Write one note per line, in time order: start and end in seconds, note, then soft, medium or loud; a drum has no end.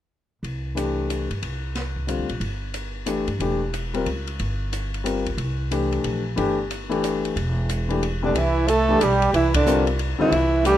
0.43 1.26 C2 medium
0.43 ride soft
0.75 1.25 E3 soft
0.75 1.26 A3 soft
0.75 1.26 D4 soft
0.75 1.26 G4 soft
0.75 hi-hat pedal soft
0.75 ride soft
1.10 hi-hat pedal soft
1.10 ride soft
1.30 1.42 G2 medium
1.30 ride soft
1.42 2.15 C2 medium
1.42 ride soft
1.75 snare soft
1.75 ride soft
1.96 kick soft
2.07 2.27 D3 soft
2.07 2.27 G3 soft
2.07 2.27 C4 soft
2.07 2.28 F4 soft
2.07 hi-hat pedal soft
2.07 ride soft
2.19 2.29 D2 soft
2.29 2.40 A#1 soft
2.29 ride soft
2.40 3.24 G1 medium
2.40 ride soft
2.74 hi-hat pedal soft
2.74 ride soft
3.06 3.25 E3 soft
3.06 3.25 A3 soft
3.06 3.26 D4 soft
3.06 3.26 G4 medium
3.06 hi-hat pedal soft
3.06 ride soft
3.28 3.39 G2 medium
3.28 ride soft
3.39 4.02 E1 medium
3.39 3.59 E3 soft
3.39 3.59 A3 soft
3.39 3.60 D4 soft
3.39 3.60 G4 medium
3.39 ride soft
3.74 hi-hat pedal soft
3.74 ride soft
3.94 4.05 G3 medium
3.94 4.05 C4 soft
3.94 4.05 F4 soft
3.94 4.06 A#4 medium
3.94 ride soft
4.06 4.37 C#2 medium
4.06 ride soft
4.27 ride soft
4.39 5.34 G1 medium
4.39 ride soft
4.73 hi-hat pedal soft
4.73 ride soft
4.94 ride soft
5.04 5.23 G3 soft
5.04 5.23 C4 soft
5.04 5.24 F4 soft
5.04 5.24 A#4 medium
5.04 hi-hat pedal soft
5.04 ride medium
5.26 kick soft
5.26 ride soft
5.37 6.00 C2 medium
5.37 ride soft
5.71 6.21 E3 medium
5.71 6.21 A3 soft
5.71 6.21 D4 soft
5.71 6.22 G4 medium
5.71 hi-hat pedal soft
5.71 ride soft
5.92 ride soft
6.04 6.35 A#1 medium
6.04 ride soft
6.36 7.32 G1 medium
6.36 6.55 E3 medium
6.36 6.56 A3 medium
6.36 6.56 D4 medium
6.36 6.56 G4 medium
6.36 ride soft
6.71 hi-hat pedal soft
6.71 ride soft
6.89 7.33 E3 medium
6.89 7.33 A3 medium
6.89 7.33 D4 soft
6.89 7.34 G4 medium
6.89 ride soft
7.04 hi-hat pedal soft
7.04 ride medium
7.25 ride soft
7.36 8.31 E1 medium
7.36 ride soft
7.69 hi-hat pedal soft
7.69 ride soft
7.89 8.00 E3 medium
7.89 8.01 A3 soft
7.89 8.01 D4 medium
7.89 8.01 G4 medium
7.89 ride soft
8.03 ride soft
8.23 8.34 C2 medium
8.23 8.37 D3 medium
8.23 8.34 E3 soft
8.23 8.34 A3 medium
8.23 8.34 D4 medium
8.23 8.40 D4 medium
8.23 8.34 G4 medium
8.35 8.97 C2 medium
8.35 8.69 E3 medium
8.35 8.72 E4 medium
8.35 ride medium
8.68 9.03 A3 medium
8.68 9.05 A4 medium
8.68 hi-hat pedal soft
8.68 ride medium
8.89 9.00 E3 medium
8.89 9.00 A3 medium
8.89 9.00 D4 medium
8.89 9.01 G4 medium
9.01 9.32 B1 medium
9.01 9.33 G3 medium
9.01 9.35 G4 medium
9.01 hi-hat pedal medium
9.01 ride medium
9.22 ride soft
9.33 10.16 C2 medium
9.33 9.53 E3 medium
9.33 9.54 E4 medium
9.33 ride medium
9.54 9.85 D3 medium
9.54 9.86 D4 medium
9.54 kick medium
9.54 ride medium
9.66 9.85 G3 medium
9.66 9.86 C4 medium
9.66 9.86 F4 medium
9.66 9.86 A#4 medium
9.66 hi-hat pedal medium
9.87 ride soft
9.99 ride soft
10.18 10.30 D3 medium
10.18 10.63 E3 medium
10.18 10.31 G3 medium
10.18 10.31 C4 medium
10.18 10.63 E4 medium
10.18 10.31 F4 medium
10.18 muted upright bass stroke soft
10.32 10.78 C2 medium
10.32 ride soft
10.63 10.78 E3 soft
10.63 10.78 G3 medium
10.63 10.78 A3 soft
10.63 10.78 D4 soft
10.63 10.78 G4 soft
10.63 10.78 G4 medium
10.63 hi-hat pedal soft
10.63 ride medium